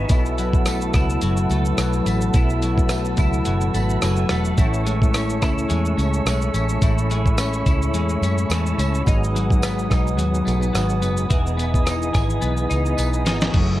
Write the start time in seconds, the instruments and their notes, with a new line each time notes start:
Already playing: clean electric guitar E3 B3 G#4, tonewheel organ D#4 B4, glass harmonica B4
0.08 fingered electric bass B1, clean electric guitar B2 E4, tonewheel organ F#3 B3 E4, glass harmonica F#5 A5 E6, kick, closed hi-hat, tambourine, shaker
0.13 tonewheel organ A4
0.26 shaker
0.38 clean electric guitar F#3, closed hi-hat, tambourine, shaker
0.53 kick, shaker
0.66 clean electric guitar A3, cross-stick, closed hi-hat, tambourine, shaker
0.81 shaker
0.94 fingered electric bass C#2, clean electric guitar E4, kick, cross-stick, closed hi-hat, tambourine, shaker
1.10 shaker
1.21 fingered electric bass F#1, clean electric guitar F#3, closed hi-hat, tambourine, shaker
1.37 shaker
1.50 fingered electric bass C#2, clean electric guitar A3, closed hi-hat, tambourine, shaker
1.65 shaker
1.78 fingered electric bass B1, clean electric guitar F#3, cross-stick, closed hi-hat, tambourine, shaker
1.93 shaker
2.06 fingered electric bass A1, clean electric guitar A3, closed hi-hat, tambourine, shaker
2.21 shaker
2.34 fingered electric bass B1, clean electric guitar B2 E4, kick, closed hi-hat, tambourine, shaker
2.50 shaker
2.62 clean electric guitar F#3, closed hi-hat, tambourine, shaker
2.78 kick, shaker
2.89 clean electric guitar A3, cross-stick, closed hi-hat, tambourine, shaker
3.05 shaker
3.17 fingered electric bass C#2, clean electric guitar E4, kick, closed hi-hat, tambourine, shaker
3.33 shaker
3.45 fingered electric bass F#1, clean electric guitar F#3, closed hi-hat, shaker
3.61 shaker
3.74 fingered electric bass G#1, clean electric guitar A3, tonewheel organ B5, closed hi-hat, tambourine, shaker
3.90 shaker
4.02 fingered electric bass F#1, clean electric guitar F#3, tonewheel organ G#5, cross-stick, closed hi-hat, tambourine, shaker
4.16 shaker
4.29 fingered electric bass E1, clean electric guitar A3, tonewheel organ F#5, cross-stick, closed hi-hat, tambourine, shaker
4.45 shaker
4.56 fingered electric bass A1, clean electric guitar A2 E4, tonewheel organ A3 C#4 E4, glass harmonica C#5, kick, closed hi-hat, tambourine, shaker
4.60 tonewheel organ C#5
4.74 shaker
4.85 clean electric guitar G#3, closed hi-hat, shaker
5.02 kick, shaker
5.14 clean electric guitar C#4, cross-stick, closed hi-hat, tambourine, shaker
5.30 shaker
5.42 fingered electric bass C#2, clean electric guitar E4, kick, cross-stick, closed hi-hat, tambourine, shaker
5.58 shaker
5.69 fingered electric bass E2, clean electric guitar G#3, closed hi-hat, tambourine, shaker
5.85 shaker
5.97 fingered electric bass C#2, clean electric guitar C#4, closed hi-hat, tambourine, shaker
6.14 shaker
6.25 fingered electric bass B1, clean electric guitar G#3, cross-stick, closed hi-hat, tambourine, shaker
6.41 shaker
6.54 fingered electric bass A1, clean electric guitar C#4, closed hi-hat, tambourine, shaker
6.69 shaker
6.82 fingered electric bass A1, clean electric guitar A2 E4, glass harmonica B5, kick, closed hi-hat, tambourine, shaker
6.98 shaker
7.10 clean electric guitar G#3, closed hi-hat, tambourine, shaker
7.26 kick, shaker
7.38 clean electric guitar C#4, cross-stick, closed hi-hat, tambourine, shaker
7.53 shaker
7.66 fingered electric bass C#2, clean electric guitar E4, kick, closed hi-hat, tambourine, shaker
7.82 shaker
7.94 fingered electric bass E2, clean electric guitar G#3, closed hi-hat, tambourine, shaker
8.09 shaker
8.22 fingered electric bass F#2, clean electric guitar C#4, closed hi-hat, tambourine, shaker
8.38 shaker
8.50 fingered electric bass E2, clean electric guitar G#3, tonewheel organ A5, cross-stick, closed hi-hat, tambourine, shaker
8.66 shaker
8.78 fingered electric bass C#2, clean electric guitar C#4, closed hi-hat, tambourine, shaker
8.95 shaker
9.04 fingered electric bass G#1, clean electric guitar G#2 D#4, tonewheel organ F#3 B3 D#4, glass harmonica B4 F#5 D#6, kick, closed hi-hat, tambourine, shaker
9.09 tonewheel organ G#4
9.24 shaker
9.35 clean electric guitar F#3, closed hi-hat, shaker
9.50 kick, shaker
9.62 clean electric guitar B3, cross-stick, closed hi-hat, tambourine, shaker
9.79 shaker
9.90 fingered electric bass B1, clean electric guitar D#4, kick, cross-stick, closed hi-hat, tambourine, shaker
10.07 shaker
10.17 fingered electric bass D#2, clean electric guitar F#3, closed hi-hat, tambourine, shaker
10.34 shaker
10.45 fingered electric bass B1, clean electric guitar A3, closed hi-hat, tambourine, shaker
10.61 clean electric guitar B3, shaker
10.73 fingered electric bass G#1, clean electric guitar F#3, cross-stick, closed hi-hat, tambourine, shaker
10.89 shaker
11.02 fingered electric bass F#1, clean electric guitar B3, closed hi-hat, tambourine, shaker
11.17 shaker
11.28 fingered electric bass E1, tonewheel organ E3 B3 D#4, clean electric guitar E3 G#4, glass harmonica B4 D#5 G#5, kick, closed hi-hat, tambourine, shaker
11.33 tonewheel organ G#4
11.47 shaker
11.57 clean electric guitar B3, closed hi-hat, tambourine, shaker
11.74 kick, shaker
11.86 clean electric guitar D#4, cross-stick, closed hi-hat, tambourine, shaker
12.02 shaker
12.13 fingered electric bass G#1, clean electric guitar G#4, kick, cross-stick, closed hi-hat, tambourine, shaker
12.30 shaker
12.41 fingered electric bass B1, clean electric guitar B3, closed hi-hat, shaker
12.57 shaker
12.70 fingered electric bass C#2, clean electric guitar D#4, closed hi-hat, tambourine, shaker
12.86 shaker
12.97 fingered electric bass B1, clean electric guitar B3, closed hi-hat, tambourine, shaker
13.13 shaker
13.25 fingered electric bass G#1, clean electric guitar D#4, snare, closed hi-hat, tambourine, shaker
13.41 snare, shaker
13.52 fingered electric bass F#1, tonewheel organ F#3 A3 E4, clean electric guitar F#3, glass harmonica A3 F#5 G#5 E6, kick, closed hi-hat, crash
13.56 tonewheel organ G#4